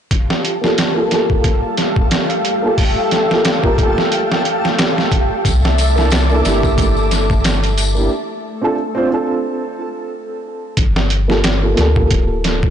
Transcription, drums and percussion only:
0.11 kick medium
0.11 closed hi-hat medium
0.30 snare soft
0.45 closed hi-hat medium
0.64 snare soft
0.78 snare loud
0.78 closed hi-hat medium
1.11 snare soft
1.11 closed hi-hat medium
1.30 kick medium
1.44 kick medium
1.44 closed hi-hat medium
1.77 snare soft
1.77 closed hi-hat medium
1.96 kick medium
2.11 snare loud
2.11 closed hi-hat medium
2.30 closed hi-hat soft
2.45 closed hi-hat medium
2.78 kick medium
2.78 open hi-hat medium
3.11 snare soft
3.11 closed hi-hat medium
3.31 snare soft
3.45 snare loud
3.45 closed hi-hat medium
3.64 kick medium
3.78 kick medium
3.78 closed hi-hat medium
3.98 snare soft
4.12 closed hi-hat medium
4.32 snare soft
4.45 closed hi-hat medium
4.65 snare soft
4.78 snare loud
4.78 closed hi-hat medium
4.98 snare soft
5.12 kick medium
5.12 closed hi-hat medium
5.45 kick medium
5.45 closed hi-hat medium
5.45 tambourine soft
5.63 snare medium
5.63 tambourine soft
5.78 closed hi-hat medium
5.78 tambourine medium
5.97 snare soft
5.97 tambourine soft
6.10 snare loud
6.10 closed hi-hat medium
6.10 tambourine medium
6.29 tambourine soft
6.45 snare soft
6.45 closed hi-hat medium
6.45 tambourine medium
6.63 kick medium
6.63 tambourine soft
6.78 kick loud
6.78 closed hi-hat medium
6.78 tambourine medium
6.97 tambourine soft
7.11 snare soft
7.11 closed hi-hat medium
7.11 tambourine medium
7.30 kick medium
7.30 tambourine soft
7.44 snare loud
7.44 closed hi-hat medium
7.44 tambourine soft
7.63 closed hi-hat soft
7.63 tambourine soft
7.78 closed hi-hat medium
7.78 tambourine medium
7.97 tambourine soft
10.77 kick loud
10.77 closed hi-hat medium
10.96 snare medium
11.10 closed hi-hat medium
11.30 snare soft
11.44 snare loud
11.44 closed hi-hat medium
11.77 snare soft
11.77 closed hi-hat medium
11.96 kick medium
12.11 kick medium
12.11 closed hi-hat medium
12.44 snare soft
12.44 closed hi-hat medium
12.63 kick medium

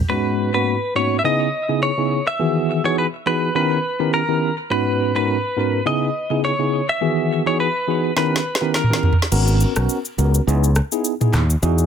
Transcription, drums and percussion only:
8.17 snare medium
8.36 snare medium
8.55 snare medium
8.74 snare medium
8.84 mid tom medium
8.93 snare medium
9.03 floor tom medium
9.13 floor tom loud
9.22 snare medium
9.32 crash loud
9.32 shaker medium
9.48 shaker medium
9.60 shaker medium
9.76 cross-stick loud
9.76 shaker medium
9.89 shaker medium
10.05 shaker medium
10.19 shaker medium
10.35 shaker loud
10.48 shaker medium
10.64 shaker medium
10.75 cross-stick medium
10.75 shaker medium
10.92 shaker medium
11.05 shaker medium
11.21 mid tom medium
11.21 shaker soft
11.33 cross-stick medium
11.33 clap medium
11.33 mid tom loud
11.33 shaker medium
11.50 shaker medium
11.63 shaker medium
11.78 shaker medium

